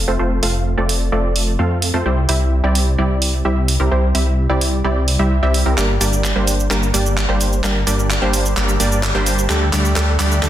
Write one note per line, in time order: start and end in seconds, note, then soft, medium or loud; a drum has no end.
0.08 0.17 F1 medium
0.08 0.17 A3 medium
0.08 0.17 C4 medium
0.08 0.17 F4 medium
0.08 0.17 A4 medium
0.08 0.17 C5 loud
0.19 0.40 F1 loud
0.19 0.37 A3 medium
0.19 0.37 C4 medium
0.19 0.37 F4 medium
0.19 0.37 A4 medium
0.19 0.37 C5 medium
0.43 0.75 F1 medium
0.43 0.75 A3 medium
0.43 0.75 C4 medium
0.43 0.75 F4 medium
0.43 0.75 A4 medium
0.43 0.75 F5 medium
0.43 open hi-hat loud
0.78 1.10 F1 medium
0.78 1.10 A3 loud
0.78 1.10 C4 medium
0.78 1.10 F4 medium
0.78 1.10 A4 medium
0.78 1.10 D5 loud
0.89 open hi-hat loud
1.12 1.57 F1 medium
1.12 1.56 A3 medium
1.12 1.56 C4 medium
1.12 1.56 F4 medium
1.12 1.56 A4 medium
1.12 1.56 D5 loud
1.36 open hi-hat loud
1.59 1.92 F2 medium
1.59 1.91 A3 medium
1.59 1.91 C4 medium
1.59 1.91 F4 medium
1.59 1.91 A4 medium
1.59 1.91 F5 medium
1.82 open hi-hat loud
1.94 2.03 F2 medium
1.94 2.03 A3 medium
1.94 2.03 C4 medium
1.94 2.03 F4 medium
1.94 2.03 A4 medium
1.94 2.03 C5 loud
2.05 2.26 C2 loud
2.05 2.23 G3 medium
2.05 2.24 C4 medium
2.05 2.23 E4 medium
2.05 2.24 G4 medium
2.05 2.23 C5 medium
2.29 2.61 C2 medium
2.29 2.61 G3 medium
2.29 2.61 C4 medium
2.29 2.61 E4 medium
2.29 2.61 G4 medium
2.29 2.61 E5 medium
2.29 open hi-hat loud
2.64 2.96 C2 loud
2.64 2.96 G3 medium
2.64 2.96 C4 medium
2.64 2.96 E4 medium
2.64 2.96 G4 medium
2.64 2.96 D5 loud
2.75 open hi-hat loud
2.98 3.43 C2 medium
2.98 3.42 G3 medium
2.98 3.42 C4 medium
2.98 3.42 E4 medium
2.98 3.42 G4 medium
2.98 3.42 D5 loud
3.22 open hi-hat loud
3.45 3.78 C2 medium
3.45 3.77 G3 medium
3.45 3.77 C4 medium
3.45 3.77 E4 medium
3.45 3.77 G4 medium
3.45 3.77 E5 medium
3.68 open hi-hat loud
3.80 3.89 C2 medium
3.80 3.89 G3 medium
3.80 3.89 C4 medium
3.80 3.89 E4 medium
3.80 3.89 G4 medium
3.80 3.89 A#4 loud
3.91 4.13 C2 loud
3.91 4.09 G3 medium
3.91 4.09 C4 medium
3.91 4.09 E4 medium
3.91 4.09 G4 medium
3.91 4.09 C5 medium
4.15 4.47 C2 medium
4.15 4.47 G3 medium
4.15 4.47 C4 medium
4.15 4.47 E4 medium
4.15 4.47 G4 medium
4.15 4.47 E5 medium
4.15 open hi-hat loud
4.50 4.82 C2 medium
4.50 4.82 G3 loud
4.50 4.82 C4 medium
4.50 4.82 E4 medium
4.50 4.82 G4 medium
4.50 4.82 D5 loud
4.61 open hi-hat loud
4.84 5.17 C2 medium
4.84 5.17 G3 medium
4.84 5.17 C4 medium
4.84 5.17 E4 medium
4.84 5.17 G4 medium
4.84 5.17 D5 loud
5.08 open hi-hat loud
5.19 5.40 C2 medium
5.19 5.37 G3 medium
5.19 5.37 C4 medium
5.19 5.37 E4 medium
5.19 5.37 G4 medium
5.19 5.37 E5 loud
5.43 5.64 C2 medium
5.43 5.62 G3 medium
5.43 5.62 C4 medium
5.43 5.62 E4 medium
5.43 5.62 G4 medium
5.43 5.62 E5 loud
5.54 open hi-hat loud
5.66 5.75 C2 medium
5.66 5.75 G3 medium
5.66 5.75 C4 medium
5.66 5.75 E4 medium
5.66 5.75 G4 medium
5.66 5.75 A#4 medium
5.78 5.99 G1 loud
5.78 5.96 G3 medium
5.78 5.96 A#3 medium
5.78 5.96 D4 medium
5.78 5.96 G4 medium
5.78 5.96 A#4 medium
5.78 clap soft
5.78 cabasa soft
6.01 6.33 G1 medium
6.01 6.33 G3 medium
6.01 6.33 A#3 medium
6.01 6.33 D4 medium
6.01 6.33 G4 medium
6.01 6.33 D5 medium
6.01 open hi-hat loud
6.01 cabasa medium
6.13 cabasa soft
6.24 clap soft
6.24 cabasa soft
6.36 6.68 G1 medium
6.36 6.68 G3 medium
6.36 6.68 A#3 medium
6.36 6.68 D4 medium
6.36 6.68 G4 medium
6.36 6.68 C5 medium
6.47 open hi-hat loud
6.47 cabasa medium
6.60 cabasa soft
6.70 6.91 G1 medium
6.70 6.89 G3 medium
6.70 6.88 A#3 medium
6.70 6.89 D4 medium
6.70 6.88 G4 medium
6.70 6.88 A#4 medium
6.70 clap medium
6.70 cabasa soft
6.83 cabasa soft
6.94 7.26 G1 medium
6.94 7.26 G3 medium
6.94 7.26 A#3 medium
6.94 7.26 D4 medium
6.94 7.26 G4 medium
6.94 7.26 D5 medium
6.94 open hi-hat loud
6.94 cabasa medium
7.06 cabasa soft
7.17 clap medium
7.17 cabasa soft
7.29 7.61 G1 medium
7.29 7.61 G3 medium
7.29 7.61 A#3 medium
7.29 7.61 D4 medium
7.29 7.61 G4 medium
7.29 7.61 C5 medium
7.41 open hi-hat loud
7.41 cabasa medium
7.53 cabasa soft
7.64 7.85 G1 loud
7.64 7.82 G3 medium
7.64 7.82 A#3 medium
7.64 7.82 D4 medium
7.64 7.82 G4 medium
7.64 7.82 A#4 medium
7.64 clap medium
7.64 cabasa soft
7.87 8.19 G1 medium
7.87 8.19 G3 medium
7.87 8.19 A#3 medium
7.87 8.19 D4 medium
7.87 8.19 G4 medium
7.87 8.19 D5 medium
7.87 open hi-hat medium
7.87 cabasa medium
7.99 cabasa soft
8.10 clap medium
8.10 cabasa soft
8.22 8.54 G1 loud
8.22 8.54 G3 medium
8.22 8.54 A#3 medium
8.22 8.54 D4 medium
8.22 8.54 G4 medium
8.22 8.54 C5 loud
8.33 open hi-hat loud
8.33 cabasa medium
8.46 cabasa soft
8.57 8.78 G1 loud
8.57 8.75 G3 medium
8.57 8.75 A#3 medium
8.57 8.75 D4 medium
8.57 8.75 G4 medium
8.57 8.75 A#4 medium
8.57 clap medium
8.57 cabasa soft
8.69 cabasa soft
8.80 9.12 G1 medium
8.80 9.12 G3 medium
8.80 9.12 A#3 medium
8.80 9.12 D4 medium
8.80 9.12 G4 medium
8.80 9.12 D5 medium
8.80 open hi-hat loud
8.80 cabasa medium
8.92 cabasa soft
9.03 clap medium
9.03 cabasa soft
9.15 9.47 G1 loud
9.15 9.47 G3 medium
9.15 9.47 A#3 medium
9.15 9.47 D4 medium
9.15 9.47 G4 medium
9.15 9.47 C5 loud
9.26 open hi-hat loud
9.26 cabasa medium
9.38 cabasa soft
9.50 9.71 D2 loud
9.50 9.68 G3 medium
9.50 9.68 A3 medium
9.50 9.68 D4 medium
9.50 9.68 G4 medium
9.50 9.68 A4 medium
9.50 clap medium
9.50 cabasa soft
9.73 9.94 D2 medium
9.73 9.94 G3 medium
9.73 9.94 A3 medium
9.73 9.94 D4 medium
9.73 9.94 G4 medium
9.73 9.94 D5 medium
9.73 clap medium
9.73 open hi-hat loud
9.73 cabasa medium
9.85 cabasa soft
9.96 10.17 D2 loud
9.96 10.14 G3 medium
9.96 10.14 A3 medium
9.96 10.14 D4 medium
9.96 10.14 G4 medium
9.96 10.14 A4 medium
9.96 clap medium
9.96 cabasa soft
10.19 10.40 D2 medium
10.19 10.41 G3 medium
10.19 10.41 A3 medium
10.19 10.41 D4 medium
10.19 10.41 G4 medium
10.19 10.41 D5 medium
10.19 clap medium
10.19 open hi-hat loud
10.19 cabasa medium
10.32 cabasa soft
10.43 10.49 D2 loud
10.43 10.49 G3 medium
10.43 10.49 A3 medium
10.43 10.49 D4 medium
10.43 10.49 G4 medium
10.43 10.49 A4 medium
10.43 clap medium
10.43 cabasa soft